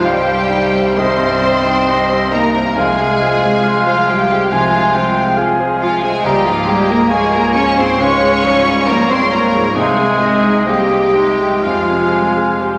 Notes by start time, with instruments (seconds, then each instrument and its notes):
Already playing: grand piano C2 G2 C4 D#4, double bass section C2, oboe C5, flute F5
0.04 viola section D#3 D#4, clarinet G3, cello section G3, french horn section G3, grand piano G4, violin section G4 G5
0.26 viola section G3 C4, grand piano C5
0.49 viola section D#3 D#4, grand piano D#4
0.74 viola section G3 C4, grand piano C4
0.97 grand piano C2, viola section D#3 D#4, cello section C4, french horn section C4, violin section C5 C6, oboe D#5, flute D#5
1.20 grand piano G2, viola section G3 C4
1.42 viola section D#3 D#4, grand piano C4, flute G5
1.64 viola section G3 C4, grand piano D#4
1.87 viola section D#3 D#4, clarinet G3, grand piano G4, flute D#5
2.09 viola section G3 C4, grand piano C5
2.31 viola section D#3 D#4, french horn section A#3, cello section A#3, grand piano D#4, violin section A#4 A#5
2.54 viola section G3 C4, grand piano C4
2.76 grand piano C2, double bass section C2, viola section F3 F4, clarinet G#3, cello section G#3, french horn section G#3, violin section G#4 G#5, oboe F5, flute F5
2.99 grand piano C3, viola section G#3 G#4
3.20 viola section F3 F4, grand piano C4, oboe F5
3.42 viola section G#3 G#4, grand piano F4
3.64 viola section F3 F4, clarinet G#3, grand piano G#4, oboe F5
3.86 cello section F3, french horn section F3, viola section G#3 G#4, violin section F4 F5, grand piano C5
4.08 viola section F3 F4, cello section G3, grand piano F4, violin section G4 G5, french horn section G4
4.30 viola section G#3 G#4, grand piano C4
4.51 grand piano C2, cello section F3, viola section F3 F4, french horn section F3, clarinet G#3, violin section F4 F5, oboe G#5, flute G#5
4.74 grand piano C3, viola section G#3 G#4
4.93 viola section F3 F4, grand piano C4, oboe G5, flute G5
5.15 viola section G#3 G#4, grand piano F4
5.36 viola section F3 F4, grand piano G#4, oboe F5, flute G#5
5.59 viola section G#3 G#4, grand piano C5
5.80 cello section F3, viola section F3 F4, french horn section F3, grand piano F4, violin section F4 F5
6.00 cello section G#3, viola section G#3 G#4, grand piano C4, violin section G#4 G#5
6.05 french horn section G#3
6.23 double bass section C#2, grand piano C#2, viola section F3 F4, cello section G3, french horn section G3, clarinet A#3, violin section G4 G5, oboe D#5, flute A#5
6.45 grand piano G#2, cello section F3, french horn section F3, viola section G#3 G#4, violin section F4 F5
6.67 viola section F3 F4, cello section G3, french horn section G3, grand piano G#3, violin section G4 G5
6.89 viola section G#3 G#4, cello section A#3, french horn section A#3, grand piano F4, violin section A#4 A#5
7.10 viola section F3 F4, cello section G#3, french horn section G#3, grand piano G#4, violin section G#4 G#5, oboe C#5, flute G#5
7.31 viola section G#3 G#4, cello section A#3, french horn section A#3, grand piano F4, violin section A#4 A#5
7.54 viola section F3 F4, grand piano G#3, cello section C#4, french horn section C#4, violin section C#5 C#6
7.75 grand piano G#2, viola section G#3 G#4, french horn section C4, cello section C4, violin section C5 C6
7.98 grand piano C#2, viola section F3 F4, clarinet G#3, cello section C#4, french horn section C#4, violin section C#5 C#6, flute F5
8.20 grand piano G#3, viola section G#3 G#4
8.43 grand piano G#2, viola section F3 F4, clarinet G3
8.64 viola section G#3 G#4, grand piano F4
8.87 viola section F3 F4, cello section A#3, french horn section A#3, grand piano F4, violin section A#4 A#5, flute C#5
9.08 viola section G#3 G#4, french horn section C4, cello section C4, grand piano F4, violin section C5 C6
9.30 grand piano F3, viola section F3 F4, cello section A#3, french horn section A#3, violin section A#4 A#5
9.53 grand piano G#2, viola section G#3 G#4
9.74 grand piano C2, double bass section C2, cello section G#3, french horn section G#3, clarinet G#3, viola section C4 D#4, violin section G#4 G#5, oboe D#5, flute F5
9.97 grand piano C3, viola section G#3 C4
10.21 grand piano G#3, viola section C4 D#4, flute D#5
10.43 viola section G#3 C4, grand piano D#4
10.66 cello section G3, clarinet A#3, viola section C4 D#4, french horn section G4, violin section G4 G5, grand piano C5
10.90 viola section G#3 C4, grand piano C5
11.15 clarinet G#3, viola section C4 D#4, grand piano D#4
11.38 grand piano G#3, viola section G#3 C4
11.63 grand piano F2, double bass section F2, cello section F3, french horn section F3, viola section G3 G4, clarinet G#3, violin section F4 F5, oboe F5, flute G#5
11.88 grand piano C3, viola section G#3 G#4
12.12 viola section G3 G4, grand piano G#3
12.36 viola section G#3 G#4, grand piano G#4
12.60 viola section G3 G4, grand piano C5